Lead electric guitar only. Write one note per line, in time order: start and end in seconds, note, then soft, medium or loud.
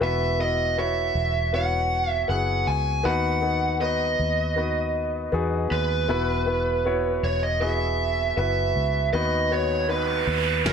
0.03 0.40 E5 medium
0.41 0.75 D#5 medium
0.79 1.54 E5 medium
1.54 2.11 F#5 medium
2.11 2.29 E5 medium
2.30 2.69 F#5 medium
2.67 3.06 G#5 medium
3.05 3.77 F#5 medium
3.81 5.67 D#5 medium
5.72 7.24 B4 medium
7.24 7.41 C#5 medium
7.43 7.61 D#5 medium
7.62 8.37 E5 medium
8.38 9.09 E5 medium
9.13 9.52 D#5 medium
9.52 9.87 C#5 medium
9.89 10.61 B4 medium
10.66 10.73 A#4 medium